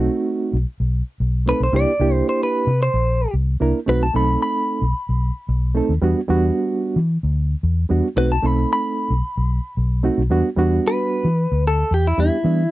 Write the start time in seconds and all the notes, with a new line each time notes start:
Already playing: A3 C4 D#4 F#4
0.53 B1
0.80 B1
1.20 B1
1.46 A3 C4 D#4 A4 B4
1.60 B1 C5
1.73 C2 A#3 D4 E4 G4 D5
1.99 C2 A#3 D4 E4 G4
2.13 C5
2.29 C5
2.43 B4
2.67 C3
2.83 C5
2.94 A#1
3.34 C2
3.60 C2 A#3 D4 E4 A#4
3.86 B1 A3 C4 D#4 F#4 B4
4.03 A5
4.13 B1 A3 C4 D#4 A4 B5
4.42 B5
4.82 B1
5.09 B1
5.49 B1
5.75 A3 C4 D#4 A4
5.89 D#2
6.02 E2 G3 B3 D4 F#4
6.28 E2 G3 B3 D4 F#4
6.96 E3
7.23 D2
7.63 E2
7.89 E2 G3 B3 D4 F#4
8.16 B1 A3 C4 D#4 F#4 B4
8.32 A5
8.42 B1 A3 C4 D#4 A4 B5
8.73 B5
9.10 B1
9.37 B1
9.77 B1
10.03 A3 C4 D#4 F#4
10.18 B1
10.30 E2 G3 B3 D4 F#4
10.57 E2 G3 B3 D4 F#4
10.88 B4
11.25 E3
11.52 D2
11.68 A4
11.91 E2 G4
12.07 E4
12.17 E2 G3 B3 D4 E4 G4
12.44 E3 G3 B3 D4 E4